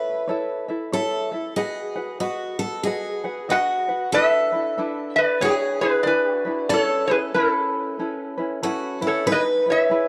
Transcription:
Already playing: ukulele E4 A4 C#5 E5, steel-string acoustic guitar B4
0.28 ukulele E4 A4 C#5 E5
0.68 ukulele E4 A4 E5
0.92 ukulele E4 A4 C#5 E5, steel-string acoustic guitar A4
1.31 ukulele E4 A4 E5
1.56 ukulele F#4 B4 D#5 F#5, steel-string acoustic guitar G#4
1.96 ukulele F#4 B4 F#5
2.20 steel-string acoustic guitar F#4, ukulele F#4 B4 D#5 F#5
2.59 steel-string acoustic guitar A4
2.83 ukulele F#4 B4 D#5 F#5, steel-string acoustic guitar G#4
3.24 ukulele F#4 B4 F#5
3.49 ukulele F#4 B4 D#5 F#5, steel-string acoustic guitar F#4, resonator guitar played with a steel bar D#5 F#5
3.88 ukulele F#4 B4 F#5
4.12 ukulele D4 E4 A4 B4, steel-string acoustic guitar A4, resonator guitar played with a steel bar B4 E5
4.52 ukulele D4 E4 B4
4.77 ukulele D4 E4 A4 B4
5.16 resonator guitar played with a steel bar B4 D5
5.41 ukulele D4 E4 G#4 B4, steel-string acoustic guitar G#4, resonator guitar played with a steel bar C#5
5.45 resonator guitar played with a steel bar G#4
5.81 ukulele D4 E4 B4, resonator guitar played with a steel bar G#4 B4
6.03 ukulele D4 E4 G#4 B4, resonator guitar played with a steel bar D5
6.07 resonator guitar played with a steel bar B4
6.32 steel-string acoustic guitar F#4
6.45 ukulele D4 E4 B4
6.69 ukulele C#4 E4 A4 B4, steel-string acoustic guitar A4, resonator guitar played with a steel bar C#5
6.74 resonator guitar played with a steel bar A4
7.07 ukulele C#4 E4 B4, resonator guitar played with a steel bar G#4 B4
7.34 ukulele C#4 E4 A4 B4, resonator guitar played with a steel bar E4 A4
7.99 ukulele C#4 E4 A4 B4
8.37 ukulele C#4 E4 B4
8.63 ukulele C#4 E4 A4 B4, steel-string acoustic guitar F#4
9.01 ukulele C#4 E4 B4, steel-string acoustic guitar E4
9.07 resonator guitar played with a steel bar A4 C#5
9.26 ukulele D#4 E4 G#4 B4, steel-string acoustic guitar B4
9.32 resonator guitar played with a steel bar B4 D#5
9.66 ukulele E4 B4, resonator guitar played with a steel bar C#5
9.72 resonator guitar played with a steel bar E5
9.90 ukulele E4 G#4 B4

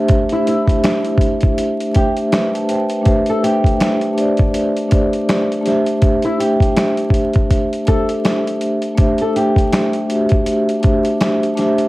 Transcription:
Already playing: vibraphone A3 D4 G4 C5 E5
0.08 kick, closed hi-hat
0.29 nylon-string guitar E4, closed hi-hat
0.47 nylon-string guitar E4, closed hi-hat
0.65 vibraphone A3 D4 G4, kick
0.69 vibraphone C5 E5, closed hi-hat
0.84 finger snap, snare, closed hi-hat
1.05 closed hi-hat
1.18 kick, closed hi-hat
1.41 kick, closed hi-hat
1.58 closed hi-hat
1.80 closed hi-hat
1.93 vibraphone A3 D4 G4, nylon-string guitar G4, kick, closed hi-hat
1.98 vibraphone C5 E5
2.17 closed hi-hat
2.32 vibraphone B4 E5, finger snap, snare, closed hi-hat
2.54 vibraphone E5 A5, closed hi-hat
2.69 vibraphone C5 G5, closed hi-hat
2.90 vibraphone B4 E5, closed hi-hat
3.02 vibraphone A3 D4 G4, closed hi-hat
3.06 vibraphone C5 E5, kick
3.26 nylon-string guitar A4, closed hi-hat
3.43 nylon-string guitar G4, closed hi-hat
3.60 vibraphone A3 D4 G4, kick
3.65 vibraphone C5 E5, closed hi-hat
3.80 finger snap, snare, closed hi-hat
4.01 closed hi-hat
4.13 vibraphone A3 D4 G4
4.18 vibraphone C5 D5, closed hi-hat
4.37 kick, closed hi-hat
4.54 closed hi-hat
4.77 closed hi-hat
4.88 vibraphone A3 D4 G4, closed hi-hat
4.92 vibraphone C5 D5, kick
5.13 closed hi-hat
5.29 finger snap, snare, closed hi-hat
5.52 closed hi-hat
5.61 vibraphone A3 D4 G4
5.66 vibraphone C5 E5, snare, closed hi-hat
5.86 closed hi-hat
6.02 kick, closed hi-hat
6.22 nylon-string guitar E4, closed hi-hat
6.40 nylon-string guitar G4, closed hi-hat
6.60 vibraphone A3 D4 G4, kick, closed hi-hat
6.64 vibraphone C5 E5
6.76 finger snap, snare, closed hi-hat
6.97 closed hi-hat
7.10 kick, closed hi-hat
7.34 kick, closed hi-hat
7.51 kick, closed hi-hat
7.73 closed hi-hat
7.86 vibraphone A3 D4 G4, nylon-string guitar A4, kick, closed hi-hat
7.91 vibraphone C5 E5
8.09 closed hi-hat
8.25 finger snap, snare, closed hi-hat
8.48 closed hi-hat
8.61 closed hi-hat
8.82 closed hi-hat
8.95 vibraphone A3 D4 G4, kick, closed hi-hat
9.00 vibraphone C5 E5
9.18 nylon-string guitar A4, closed hi-hat
9.36 nylon-string guitar G4, closed hi-hat
9.56 vibraphone D4 G4 C5, kick, closed hi-hat
9.62 vibraphone E5
9.73 finger snap, snare, closed hi-hat
9.93 closed hi-hat
10.06 vibraphone A3 D4 F#4, closed hi-hat
10.10 vibraphone C5 E5
10.15 vibraphone G4
10.29 kick, closed hi-hat
10.46 closed hi-hat
10.69 closed hi-hat
10.81 vibraphone A3 D4 G4, kick, closed hi-hat
10.85 vibraphone C5 E5
11.05 closed hi-hat
11.21 finger snap, snare, closed hi-hat
11.43 closed hi-hat
11.55 vibraphone A3 D4 G4, closed hi-hat
11.59 vibraphone C5 E5, snare
11.78 closed hi-hat

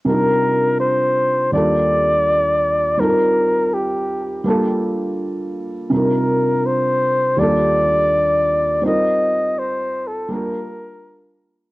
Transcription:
0.05 felt piano C3 G3 D4 D#4, flugelhorn A#4
0.10 felt piano F4 A#4
0.80 flugelhorn C5
1.51 felt piano D#2 G3 A#3 D4, flugelhorn D5
1.56 felt piano F4 A4
2.97 felt piano G3 C4 D#4, flugelhorn A#4
3.02 felt piano F4 A4
3.10 felt piano A#4
3.73 flugelhorn G4
4.44 felt piano G3 A#3 D4
4.48 felt piano F4 A4
5.90 felt piano C3 G3 D4 D#4, flugelhorn A#4
5.94 felt piano F4 A#4
6.66 flugelhorn C5
7.37 felt piano D#2 G3 A#3 D4, flugelhorn D5
7.41 felt piano F4 A4
8.82 felt piano G3 C4 D#4, flugelhorn D#5
8.86 felt piano F4 A#4
9.59 flugelhorn C5
10.07 flugelhorn A4
10.28 felt piano G3 A#3 D4, flugelhorn A#4
10.33 felt piano F4 A#4

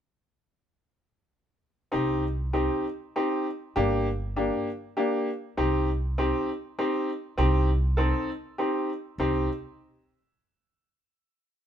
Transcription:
1.92 upright bass C2, upright piano C4 D#4 G4
2.53 upright piano C4 D#4 G4
3.16 upright piano C4 D#4 G4
3.76 upright bass G1, upright piano A#3 D4 G4
4.36 upright piano A#3 D4 G4
4.97 upright piano A#3 D4 G4
5.57 upright bass C2, upright piano C4 D#4 G4
6.18 upright piano C4 D#4 G4
6.79 upright piano C4 D#4 G4
7.38 upright bass C2, upright piano C4 D#4 G4
7.97 upright piano C4 D#4 A4
8.58 upright piano C4 D#4 G4
9.18 upright bass C2, upright piano C4 D#4 G4

